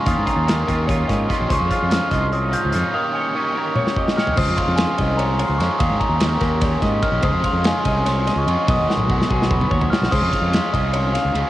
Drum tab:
CC |--------------|--------------|--------------|x-------------|
RD |--------------|--------------|--------------|--x-x-x-x-x-x-|
HH |x-x-x-x-x-x-x-|x-x-x-x-x-x-x-|--------------|--------------|
SD |----o---o-o-o-|----o-o-------|---------o-oo-|----o-------o-|
T1 |--------------|--------------|--------o-----|--------------|
T2 |--------------|--------------|--------------|--------------|
FT |--------------|--------------|-------------o|--------------|
BD |o-o---o-o-o-o-|o-o---o-------|----------o---|o-o---o-------|

CC |--------------|--------------|--------------|x-------------|
RD |x-x-x-x-x-x-x-|x-x-x-x-x-x-x-|x-------------|--x-x-x-x-x-x-|
HH |--------------|--------------|--------------|--------------|
SD |----o-o-o-o---|----o---o-o---|--o--o-o----oo|--o-o-----o---|
T1 |--------------|--------------|---o----------|--------------|
T2 |--------------|--------------|--------oo----|--------------|
FT |--------------|--------------|-----------o--|--------------|
BD |o-o---o-o-o-o-|o-o---o-------|o---o-o-o-o---|o-o---o-------|